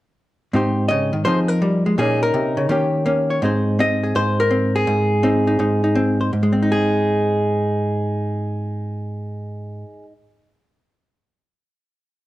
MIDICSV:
0, 0, Header, 1, 2, 480
1, 0, Start_track
1, 0, Key_signature, -4, "major"
1, 0, Tempo, 361011
1, 695, Time_signature, 4, 2, 24, 8
1, 16309, End_track
2, 0, Start_track
2, 0, Title_t, "Hollow-body jazz guitar"
2, 0, Program_c, 0, 26
2, 710, Note_on_c, 0, 44, 56
2, 716, Note_on_c, 0, 60, 37
2, 728, Note_on_c, 0, 63, 37
2, 737, Note_on_c, 0, 67, 38
2, 749, Note_on_c, 0, 72, 39
2, 1171, Note_off_c, 0, 72, 0
2, 1176, Note_on_c, 0, 75, 88
2, 1204, Note_on_c, 0, 49, 60
2, 1495, Note_off_c, 0, 49, 0
2, 1500, Note_on_c, 0, 51, 52
2, 1644, Note_off_c, 0, 60, 0
2, 1654, Note_off_c, 0, 67, 0
2, 1654, Note_off_c, 0, 75, 0
2, 1659, Note_off_c, 0, 51, 0
2, 1659, Note_on_c, 0, 72, 81
2, 1661, Note_off_c, 0, 44, 0
2, 1669, Note_on_c, 0, 53, 64
2, 1680, Note_on_c, 0, 60, 42
2, 1683, Note_off_c, 0, 63, 0
2, 1689, Note_on_c, 0, 63, 43
2, 1702, Note_on_c, 0, 68, 43
2, 1846, Note_off_c, 0, 72, 0
2, 1972, Note_off_c, 0, 68, 0
2, 1972, Note_on_c, 0, 70, 72
2, 2144, Note_off_c, 0, 60, 0
2, 2150, Note_on_c, 0, 55, 57
2, 2456, Note_off_c, 0, 55, 0
2, 2474, Note_on_c, 0, 56, 56
2, 2601, Note_off_c, 0, 53, 0
2, 2614, Note_off_c, 0, 70, 0
2, 2625, Note_off_c, 0, 56, 0
2, 2630, Note_on_c, 0, 46, 59
2, 2637, Note_on_c, 0, 58, 38
2, 2645, Note_on_c, 0, 68, 65
2, 2647, Note_off_c, 0, 63, 0
2, 2653, Note_on_c, 0, 61, 41
2, 2659, Note_on_c, 0, 63, 39
2, 2941, Note_off_c, 0, 68, 0
2, 2961, Note_on_c, 0, 70, 72
2, 3101, Note_off_c, 0, 46, 0
2, 3108, Note_on_c, 0, 48, 56
2, 3416, Note_off_c, 0, 48, 0
2, 3418, Note_on_c, 0, 49, 55
2, 3572, Note_off_c, 0, 49, 0
2, 3573, Note_off_c, 0, 61, 0
2, 3577, Note_on_c, 0, 51, 64
2, 3583, Note_off_c, 0, 58, 0
2, 3588, Note_on_c, 0, 58, 42
2, 3597, Note_on_c, 0, 61, 44
2, 3605, Note_off_c, 0, 63, 0
2, 3610, Note_on_c, 0, 67, 41
2, 4056, Note_off_c, 0, 61, 0
2, 4058, Note_off_c, 0, 58, 0
2, 4063, Note_on_c, 0, 58, 57
2, 4072, Note_on_c, 0, 61, 47
2, 4385, Note_off_c, 0, 70, 0
2, 4392, Note_on_c, 0, 73, 43
2, 4516, Note_off_c, 0, 51, 0
2, 4524, Note_off_c, 0, 61, 0
2, 4526, Note_off_c, 0, 73, 0
2, 4547, Note_on_c, 0, 44, 65
2, 4551, Note_off_c, 0, 58, 0
2, 4556, Note_on_c, 0, 60, 39
2, 4565, Note_on_c, 0, 63, 40
2, 4572, Note_off_c, 0, 67, 0
2, 4577, Note_on_c, 0, 68, 39
2, 4591, Note_on_c, 0, 72, 36
2, 5035, Note_off_c, 0, 60, 0
2, 5041, Note_on_c, 0, 60, 61
2, 5052, Note_off_c, 0, 72, 0
2, 5057, Note_on_c, 0, 75, 95
2, 5359, Note_off_c, 0, 68, 0
2, 5364, Note_on_c, 0, 68, 40
2, 5514, Note_off_c, 0, 44, 0
2, 5517, Note_off_c, 0, 75, 0
2, 5519, Note_on_c, 0, 44, 61
2, 5529, Note_on_c, 0, 72, 89
2, 5843, Note_off_c, 0, 68, 0
2, 5848, Note_on_c, 0, 70, 75
2, 5985, Note_off_c, 0, 60, 0
2, 5991, Note_on_c, 0, 60, 59
2, 6310, Note_off_c, 0, 72, 0
2, 6323, Note_on_c, 0, 68, 71
2, 6471, Note_off_c, 0, 44, 0
2, 6477, Note_on_c, 0, 44, 62
2, 6794, Note_off_c, 0, 70, 0
2, 6951, Note_off_c, 0, 60, 0
2, 6956, Note_on_c, 0, 60, 63
2, 6961, Note_off_c, 0, 63, 0
2, 6967, Note_on_c, 0, 63, 45
2, 7261, Note_off_c, 0, 63, 0
2, 7277, Note_on_c, 0, 63, 41
2, 7416, Note_off_c, 0, 44, 0
2, 7426, Note_off_c, 0, 63, 0
2, 7432, Note_on_c, 0, 44, 57
2, 7442, Note_on_c, 0, 63, 47
2, 7748, Note_off_c, 0, 63, 0
2, 7763, Note_on_c, 0, 63, 44
2, 7901, Note_off_c, 0, 60, 0
2, 7917, Note_on_c, 0, 60, 59
2, 8235, Note_off_c, 0, 68, 0
2, 8253, Note_on_c, 0, 72, 41
2, 8372, Note_off_c, 0, 60, 0
2, 8378, Note_off_c, 0, 63, 0
2, 8382, Note_off_c, 0, 72, 0
2, 8397, Note_off_c, 0, 44, 0
2, 8413, Note_on_c, 0, 44, 51
2, 8547, Note_on_c, 0, 56, 50
2, 8676, Note_on_c, 0, 60, 48
2, 8808, Note_on_c, 0, 63, 45
2, 8931, Note_on_c, 0, 68, 69
2, 13067, Note_off_c, 0, 44, 0
2, 13200, Note_off_c, 0, 56, 0
2, 13330, Note_off_c, 0, 60, 0
2, 13361, Note_off_c, 0, 68, 0
2, 13462, Note_off_c, 0, 63, 0
2, 16309, End_track
0, 0, End_of_file